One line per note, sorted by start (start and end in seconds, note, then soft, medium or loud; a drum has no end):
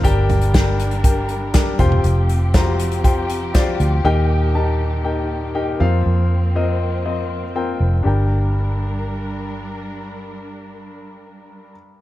0.03 1.76 G1 medium
0.03 0.75 G2 medium
0.03 0.75 D3 medium
0.03 1.78 G3 medium
0.03 0.42 D4 loud
0.03 1.78 D4 medium
0.03 0.42 G4 loud
0.03 0.42 A#4 loud
0.03 1.78 A#4 medium
0.03 0.42 G5 loud
0.03 kick loud
0.03 closed hi-hat medium
0.30 closed hi-hat medium
0.30 floor tom medium
0.41 closed hi-hat medium
0.54 0.92 D4 medium
0.54 0.92 G4 medium
0.54 0.92 A#4 medium
0.54 0.92 G5 medium
0.54 kick loud
0.54 snare medium
0.54 closed hi-hat medium
0.80 closed hi-hat medium
0.91 closed hi-hat soft
1.04 1.42 D4 medium
1.04 1.42 G4 medium
1.04 1.42 A#4 medium
1.04 1.42 G5 medium
1.04 kick medium
1.04 closed hi-hat medium
1.29 closed hi-hat medium
1.54 1.79 D4 medium
1.54 1.78 G4 medium
1.54 1.79 A#4 medium
1.54 1.78 G5 medium
1.54 kick loud
1.54 snare medium
1.54 closed hi-hat medium
1.79 2.03 F1 medium
1.79 2.51 C3 medium
1.79 4.03 F3 medium
1.79 4.03 C4 medium
1.79 2.39 F4 medium
1.79 2.39 G4 medium
1.79 5.76 G4 medium
1.79 2.39 C5 medium
1.79 2.40 G5 medium
1.79 kick medium
1.79 closed hi-hat medium
1.79 floor tom medium
1.92 floor tom medium
2.04 3.76 F1 loud
2.04 closed hi-hat medium
2.29 closed hi-hat medium
2.54 2.92 F4 medium
2.54 2.61 F#4 medium
2.54 2.93 C5 medium
2.54 2.93 A#5 medium
2.54 kick medium
2.54 snare loud
2.54 closed hi-hat medium
2.60 2.95 G4 medium
2.79 closed hi-hat medium
2.92 closed hi-hat soft
3.04 3.42 F4 medium
3.04 3.42 G4 medium
3.04 3.42 C5 medium
3.04 3.42 G5 medium
3.04 kick medium
3.04 closed hi-hat medium
3.30 closed hi-hat medium
3.54 3.92 F4 medium
3.54 3.61 F#4 medium
3.54 3.92 C5 medium
3.54 3.92 D5 medium
3.54 kick loud
3.54 snare medium
3.54 closed hi-hat medium
3.60 3.95 G4 medium
3.80 4.03 D2 medium
3.80 closed hi-hat soft
4.04 5.76 D#2 medium
4.04 4.76 A#2 medium
4.04 5.78 D#3 medium
4.04 8.01 A#3 medium
4.04 4.43 D#4 loud
4.04 4.43 G4 medium
4.04 4.43 A#4 medium
4.04 4.43 G5 loud
4.55 4.93 D#4 medium
4.55 4.93 G4 medium
4.55 4.93 A#4 medium
4.55 4.93 A5 medium
5.04 5.43 D#4 medium
5.04 5.43 G4 medium
5.04 5.43 A#4 medium
5.04 5.43 G5 medium
5.55 5.80 D#4 medium
5.55 5.80 G4 medium
5.55 5.79 A#4 medium
5.55 5.80 G5 medium
5.80 6.04 F2 medium
5.80 6.51 F3 medium
5.80 8.03 F3 medium
5.80 6.40 C4 medium
5.80 8.03 C4 medium
5.80 6.40 F4 medium
5.80 6.40 A#4 medium
5.80 6.40 F5 medium
6.06 7.77 F2 medium
6.55 6.93 C4 medium
6.55 6.93 F4 medium
6.55 6.93 A#4 medium
6.55 6.93 D#5 medium
7.05 7.43 C4 medium
7.05 7.43 F4 medium
7.05 7.43 A#4 soft
7.05 7.43 D#5 medium
7.55 7.93 C4 medium
7.55 7.93 F4 medium
7.55 7.93 A#4 medium
7.55 7.93 G5 medium
7.80 8.04 F1 medium
8.03 11.72 G1 medium
8.03 11.71 G2 medium
8.03 11.71 G3 medium
8.03 11.69 D4 medium
8.03 11.72 D4 medium
8.03 11.70 G4 medium
8.03 11.71 A#4 medium
8.03 11.72 A#4 medium
8.03 11.73 G5 medium